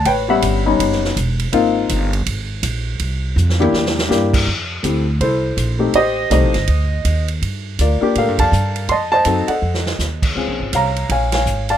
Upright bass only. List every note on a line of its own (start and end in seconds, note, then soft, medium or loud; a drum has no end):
0.05 0.41 A1 medium
0.42 0.78 G1 medium
0.79 1.15 F#1 medium
1.16 1.52 E1 medium
1.53 1.88 G#1 medium
1.90 2.25 G1 medium
2.26 2.62 G#1 medium
2.63 2.98 A#1 medium
3.00 3.35 C2 medium
3.36 3.72 F2 medium
3.73 4.09 E2 medium
4.10 4.46 G2 medium
4.47 4.83 F2 medium
4.84 5.19 D2 medium
5.20 5.56 C2 medium
5.57 5.93 A#1 medium
5.94 6.30 A1 medium
6.31 6.43 C2 medium
6.43 6.55 A1 soft
6.55 6.67 G1 medium
6.68 7.03 D2 medium
7.05 7.40 D#2 medium
7.42 7.77 G2 medium
7.79 8.00 D2 medium
8.02 muted upright bass stroke soft
8.16 8.28 A2 medium
8.28 8.40 G2 medium
8.40 8.51 F2 medium
8.52 8.88 G2 medium
8.89 9.24 F2 medium
9.25 9.47 F#2 medium
9.48 muted upright bass stroke soft
9.62 9.98 F2 medium
9.99 10.35 D#2 medium
10.36 10.48 C#2 medium
10.48 10.60 A#1 medium
10.60 10.72 G#1 medium
10.73 11.08 C2 medium
11.09 11.45 A#1 medium
11.46 11.78 G#1 medium